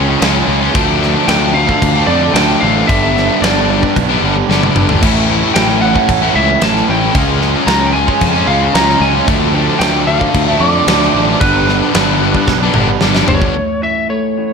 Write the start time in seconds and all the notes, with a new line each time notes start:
Already playing: C#2 C#3 G#3 C#4 F4
0.09 muted distorted electric guitar stroke
0.19 C#2 C#3 G#3 C#4 F4, snare, crash
0.47 C#2 C#3 G#3 C#4 F4
0.60 G#3 C#4 F4
0.73 D2 D3 F3 A3 D4, kick, crash
1.00 D3 F3 A3 D4, snare
1.15 F3 A3 D4
1.26 D2 D3 F3 A3 D4 G5, snare, crash
1.40 F3 A3 D4
1.54 D3 F3 A3 D4 F5, muted overdriven electric guitar stroke
1.67 F3 A3 D4, muted distorted electric guitar stroke, kick
1.82 D2, kick, crash
1.94 F3 A3 D4
2.07 F2 D3 F3 A3 D4 D5
2.23 muted distorted electric guitar stroke
2.34 D2 D3 F3 A3 D4 G5, snare, crash
2.50 snare
2.60 A1 D3 F3 F5
2.65 A3 D4
2.75 F3 A3 D4
2.87 G1 G2 D3 G3 B3 D4 E5, kick, crash
3.15 D3 G3 B3 D4, snare
3.28 G3 B3 D4
3.42 G1 G2 D3 G3 B3 D4 D5, snare, crash
3.55 G3 B3 D4
3.69 D3 G3 B3 D4, muted overdriven electric guitar stroke
3.82 G3 B3 D4, muted distorted electric guitar stroke, kick
3.96 B1, kick, crash
4.08 G3 B3 D4
4.21 G1 D3 G3 B3 D4
4.36 muted distorted electric guitar stroke
4.49 G1 G2 D3 G3 B3 D4, snare
4.63 high tom
4.76 G1 D3 G3 B3 D4, mid tom
4.89 G3 B3 D4, floor tom
5.02 A1 A2 E3 A3 C#4 E4, kick, crash
5.28 E3 A3 C#4 E4
5.42 A3 C#4 E4
5.54 A1 A2 E3 A3 C#4 E4 G5, snare, crash
5.69 A3 C#4 E4
5.81 E3 A3 C#4 E4 F#5, muted overdriven electric guitar stroke
5.94 A3 C#4 E4, muted distorted electric guitar stroke, kick
6.09 A1, kick, crash
6.21 A3 C#4 E4
6.34 C#2 E3 A3 C#4 E4 E5
6.50 muted distorted electric guitar stroke
6.60 A1 A2 E3 A3 C#4 E4 A5, snare, crash
6.76 snare
6.87 A1 E3 A3 C#4 E4 G5
7.01 A3 C#4 E4
7.13 C#2 C#3 G#3 C#4 F4, kick, crash
7.40 C#3 G#3 C#4 F4, snare
7.56 G#3 C#4 F4
7.66 C#2 C#3 G#3 C#4 F4 A#5, snare, crash
7.80 G#3 C#4 F4
7.87 G5
7.93 C#3 G#3 C#4 F4 G#5, muted overdriven electric guitar stroke
8.07 G#3 C#4 F4, muted distorted electric guitar stroke, kick
8.21 F2, kick, crash
8.34 G#3 C#4 F4
8.46 C#2 C#3 G#3 C#4 F4 F5
8.63 muted distorted electric guitar stroke
8.72 C#2 C#3 G#3 C#4 F4 A#5, snare, crash
8.77 C#3 G#3
8.90 snare
9.00 C#2 C#3 G#3 C#4 F4 G#5
9.13 G#3 C#4 F4
9.25 D2 D3 F3 A3 D4, kick, crash
9.53 D3 F3 A3 D4
9.68 F3 A3 D4
9.79 D2 D3 F3 A3 D4 G5, snare, crash
9.93 F3 A3 D4
10.07 D3 F3 A3 D4 F5, muted overdriven electric guitar stroke
10.19 F3 A3 D4, muted distorted electric guitar stroke, kick
10.34 D2, kick, crash
10.46 F3 A3 D4 E5
10.59 F2 D3 F3 A3 D4 D5
10.75 muted distorted electric guitar stroke
10.86 D2 D3 F3 A3 D4, snare, crash
11.03 snare
11.14 A1 D3 F3 A3 D4
11.28 F3 A3 D4
11.39 G1 G2 D3 G3 B3 D4 B4, kick, crash
11.66 D3 G3 B3 D4, snare
11.82 G3 B3 D4
11.92 G1 G2 D3 G3 B3 D4, snare, crash
12.07 G3 B3 D4
12.22 D3 G3 B3 D4, muted overdriven electric guitar stroke
12.34 G3 B3 D4, muted distorted electric guitar stroke, kick
12.47 B1, kick, snare
12.60 G3 B3 D4
12.74 G1 D3 G3 B3 D4, mid tom
12.89 muted distorted electric guitar stroke
13.01 G1 G2 D3 G3 B3 D4, snare
13.15 snare
13.28 G1 D3 G3 B3 D4 C#5, floor tom
13.41 G3 B3 D4, kick
13.55 A2
13.82 E3 E5
14.09 A3 C#5
14.38 E3